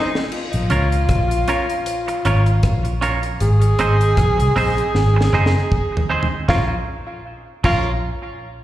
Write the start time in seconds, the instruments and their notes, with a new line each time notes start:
Already playing: clean electric guitar D#4 G#4 C5, tenor saxophone D#4
0.15 snare
0.32 tenor saxophone F4, crash
0.53 fingered electric bass A#1, closed hi-hat
0.70 fingered electric bass C#2, clean electric guitar C#4 F4 A#4 C#5, closed hi-hat
0.92 closed hi-hat
1.09 fingered electric bass A#1, kick, cross-stick, closed hi-hat
1.31 closed hi-hat
1.48 clean electric guitar C#4 F4 A#4 C#5, closed hi-hat
1.70 closed hi-hat
1.86 closed hi-hat
2.08 muted clean electric guitar stroke, closed hi-hat
2.25 fingered electric bass G#1, clean electric guitar C#4 F4 A#4 C#5, closed hi-hat
2.46 closed hi-hat
2.63 fingered electric bass A#1, kick, cross-stick, closed hi-hat
2.85 closed hi-hat
3.01 clean electric guitar C#4 F4 A#4 C#5, closed hi-hat
3.23 closed hi-hat
3.40 fingered electric bass G#1, tenor saxophone G#4, closed hi-hat
3.62 closed hi-hat
3.79 fingered electric bass G#1, clean electric guitar C4 D#4 G#4 C5, closed hi-hat
4.01 closed hi-hat
4.17 fingered electric bass A#1, kick, cross-stick, closed hi-hat
4.39 fingered electric bass C2, closed hi-hat
4.56 fingered electric bass A#1, clean electric guitar C4 D#4 G#4 C5, open hi-hat
4.78 closed hi-hat
4.95 fingered electric bass G#1, snare
5.16 muted clean electric guitar stroke
5.21 snare
5.33 fingered electric bass F#1, clean electric guitar C4 D#4 G#4 C5
5.46 snare
5.72 kick
5.97 floor tom
6.10 clean electric guitar C4 D#4 G#4 C5
6.23 floor tom
6.48 fingered electric bass A#1, clean electric guitar C#4 F4 A#4 C#5, tenor saxophone F4, kick, snare
7.64 fingered electric bass A#1, clean electric guitar C#4 F4 A#4 C#5, tenor saxophone F4, kick, crash